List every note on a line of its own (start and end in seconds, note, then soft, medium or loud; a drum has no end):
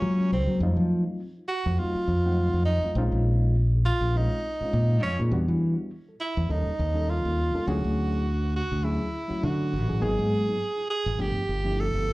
0.00 0.34 F#3 medium
0.00 0.34 G#3 medium
0.00 0.34 A#3 medium
0.00 0.32 C#4 medium
0.00 0.34 C#4 medium
0.00 0.34 F4 medium
0.32 0.46 C#2 medium
0.32 0.60 C4 medium
0.47 0.59 F#3 medium
0.47 0.59 G#3 medium
0.47 0.59 A#3 medium
0.47 0.59 C#4 medium
0.47 0.60 F#4 medium
0.60 0.75 F2 medium
0.60 1.19 F#3 medium
0.60 1.19 A3 medium
0.60 1.20 C4 medium
0.60 1.20 D#4 medium
0.60 1.20 F4 medium
0.76 1.03 F3 medium
1.37 1.43 D#4 soft
1.37 1.44 F4 soft
1.48 1.80 F#4 loud
1.66 1.77 F2 medium
1.79 2.03 F#3 medium
1.79 2.03 A3 medium
1.79 2.03 C4 medium
1.79 2.03 D#4 medium
1.79 2.64 F4 medium
1.79 2.03 F#4 medium
1.95 muted fingered electric bass stroke soft
2.08 2.48 F2 medium
2.08 2.17 F#4 soft
2.25 2.69 F#3 medium
2.25 2.69 A3 medium
2.25 2.70 C4 medium
2.25 2.70 D#4 medium
2.25 2.70 F#5 medium
2.53 2.79 F2 medium
2.65 2.93 D#4 loud
2.83 2.94 F#3 medium
2.83 2.94 A3 medium
2.83 2.95 C4 medium
2.83 2.95 D#4 medium
2.83 2.95 F4 medium
2.83 muted fingered electric bass stroke soft
2.95 3.10 A#1 medium
2.95 3.54 G#3 medium
2.95 3.54 C4 medium
2.95 3.55 C#4 medium
2.95 3.55 D#4 medium
2.95 3.55 F4 loud
3.12 3.89 A#1 medium
3.73 3.79 D#4 soft
3.73 3.80 G#4 soft
3.85 4.18 F4 loud
4.01 4.27 A#1 medium
4.15 4.39 G#3 medium
4.15 4.39 C4 medium
4.15 4.39 C#4 medium
4.15 5.02 D#4 medium
4.15 4.39 D#4 medium
4.15 4.40 F4 medium
4.46 4.53 D#4 soft
4.46 4.53 F4 soft
4.61 5.05 G#3 medium
4.61 5.05 C4 medium
4.61 5.05 C#4 medium
4.61 5.05 D#4 medium
4.61 5.06 F4 medium
4.61 muted fingered electric bass stroke soft
4.73 5.03 A#2 medium
5.03 5.17 F2 medium
5.03 5.20 C#4 loud
5.19 5.31 A#2 medium
5.19 5.29 G#3 medium
5.19 5.30 C4 medium
5.19 5.30 C#4 medium
5.19 5.30 D#4 medium
5.19 5.30 G#4 medium
5.31 5.46 E2 medium
5.31 5.89 G3 medium
5.31 5.90 B3 medium
5.31 5.90 D4 medium
5.31 5.90 E4 medium
5.31 5.90 F#4 loud
5.48 5.74 E3 medium
6.07 6.13 E4 soft
6.07 6.14 A4 soft
6.20 6.52 E4 medium
6.37 6.48 E2 medium
6.48 6.64 D#2 medium
6.48 6.73 G3 medium
6.48 6.73 A#3 medium
6.48 6.73 C#4 medium
6.48 6.73 D#4 medium
6.48 7.11 D#4 medium
6.48 6.73 A4 medium
6.67 muted fingered electric bass stroke soft
6.79 7.19 D#2 medium
6.79 6.87 A4 soft
6.94 7.39 G3 medium
6.94 7.39 A#3 medium
6.94 7.39 C#4 medium
6.94 7.40 D#4 medium
6.94 7.40 A4 medium
7.09 7.69 F4 medium
7.25 7.50 D#2 medium
7.53 7.64 G3 medium
7.53 7.64 A#3 medium
7.53 7.64 C#4 medium
7.53 7.65 D#4 medium
7.53 7.65 A4 medium
7.53 muted fingered electric bass stroke soft
7.66 7.82 D2 medium
7.66 8.24 F#3 medium
7.66 8.24 A3 medium
7.66 8.24 C#4 medium
7.66 8.24 E4 medium
7.66 8.55 F#4 medium
7.66 8.25 G#4 medium
7.84 8.61 D2 medium
8.42 8.48 E4 soft
8.42 8.49 B4 soft
8.56 8.85 F#4 medium
8.72 8.97 D2 medium
8.83 9.07 F#3 medium
8.83 9.08 A3 medium
8.83 9.08 C#4 medium
8.83 9.46 E4 medium
8.83 9.08 E4 medium
8.83 9.08 G#4 medium
9.28 9.73 F#3 medium
9.28 9.74 A3 medium
9.28 9.74 C#4 medium
9.28 9.74 E4 medium
9.28 9.74 F#4 medium
9.28 muted fingered electric bass stroke soft
9.43 9.75 D3 medium
9.43 10.05 F#4 medium
9.73 9.87 A1 medium
9.87 10.01 A1 medium
9.87 9.98 F#3 medium
9.87 9.99 A3 medium
9.87 9.99 C#4 medium
9.87 9.99 E4 medium
9.87 9.99 G#4 medium
10.00 10.16 G#1 medium
10.00 10.58 F#3 medium
10.00 10.58 A#3 medium
10.00 10.59 B3 medium
10.00 10.59 D#4 medium
10.00 10.59 G#4 loud
10.00 10.89 G#4 medium
10.19 10.44 G#2 medium
10.76 10.83 D#4 soft
10.76 10.84 F4 soft
10.90 11.22 G#4 loud
11.06 11.18 G#1 medium
11.18 11.33 G1 loud
11.18 11.42 F3 medium
11.18 11.42 A3 medium
11.18 11.42 B3 medium
11.18 11.43 D4 medium
11.18 11.43 G4 medium
11.18 11.81 G4 medium
11.36 muted fingered electric bass stroke soft
11.48 11.88 G1 medium
11.48 11.56 D4 soft
11.48 11.57 A4 soft
11.64 12.09 F3 medium
11.64 12.09 A3 medium
11.64 12.09 B3 medium
11.64 12.09 D4 medium
11.64 12.09 E4 medium
11.80 12.13 A4 medium
11.94 12.13 G1 medium